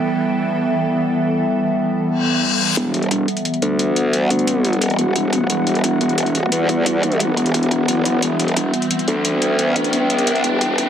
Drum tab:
HH |----------------|----------------|x-xxx-xxxxx-x-x-|x-xxx-xxxxx-x-x-|

HH |x-xxx-xxxxx-x-x-|x-xxx-xxxxx-x-x-|x-xxx-xxxxx-x-x-|x-xxx-xxxxx-x-x-|